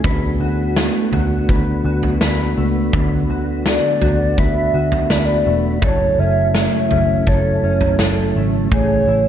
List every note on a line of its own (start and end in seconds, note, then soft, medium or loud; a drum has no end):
0.00 9.28 A3 medium
0.00 0.12 C#4 medium
0.00 0.12 E4 medium
0.04 0.36 D2 loud
0.04 5.79 B3 medium
0.04 5.79 D4 medium
0.04 5.79 F#4 medium
0.04 1.49 B4 medium
0.04 kick medium
0.04 floor tom medium
0.40 0.88 D2 medium
0.40 1.13 F#4 medium
0.76 2.57 A3 medium
0.76 snare loud
1.12 1.44 D2 medium
1.12 1.85 F#4 medium
1.12 floor tom medium
1.49 1.81 D2 medium
1.49 2.20 B4 medium
1.49 kick medium
1.49 floor tom soft
1.85 2.17 D2 medium
1.85 3.29 F#4 medium
2.03 floor tom medium
2.21 2.53 D2 medium
2.21 2.93 B4 medium
2.21 snare loud
2.57 2.89 C#2 medium
2.57 3.65 A3 medium
2.93 3.25 D2 medium
2.93 5.83 D3 medium
2.93 4.37 B4 medium
2.93 kick medium
2.93 floor tom medium
3.30 3.77 D2 medium
3.30 4.01 F#4 medium
3.65 5.46 A3 soft
3.65 4.40 D5 loud
3.65 snare medium
4.01 4.34 D2 medium
4.01 4.74 F#4 medium
4.01 floor tom medium
4.38 4.70 D2 medium
4.38 5.09 B4 medium
4.38 5.13 E5 loud
4.38 kick medium
4.38 floor tom medium
4.74 5.06 D2 medium
4.74 6.19 F#4 medium
4.92 floor tom medium
5.10 5.42 D2 medium
5.10 5.83 B4 medium
5.10 5.20 D5 loud
5.10 snare medium
5.18 5.27 E5 medium
5.25 5.65 D5 medium
5.46 5.78 E1 medium
5.46 6.54 A3 soft
5.82 6.14 F#1 medium
5.82 8.72 F#2 medium
5.82 9.28 C#3 medium
5.82 8.69 F#3 soft
5.82 8.69 E4 medium
5.82 7.27 A4 medium
5.82 6.21 C#5 loud
5.82 kick loud
5.82 floor tom medium
6.19 6.67 F#1 loud
6.19 6.91 C#4 medium
6.19 6.55 E5 loud
6.55 8.36 A3 medium
6.55 7.30 E5 loud
6.55 snare medium
6.91 7.23 F#1 medium
6.91 7.63 C#4 medium
6.91 floor tom medium
7.27 7.59 F#1 medium
7.27 7.99 A4 medium
7.27 8.36 C#5 medium
7.27 kick medium
7.27 floor tom medium
7.63 7.95 F#1 medium
7.63 9.08 C#4 medium
7.81 floor tom medium
7.99 8.31 F#1 medium
7.99 8.72 A4 medium
7.99 snare medium
8.36 8.68 G#1 medium
8.36 8.72 A3 medium
8.72 9.04 A1 medium
8.72 9.28 A3 medium
8.72 9.28 E4 medium
8.72 9.28 G#4 medium
8.72 9.28 C#5 loud
8.72 kick loud
8.72 floor tom medium
9.08 9.28 A1 medium
9.08 9.28 E4 medium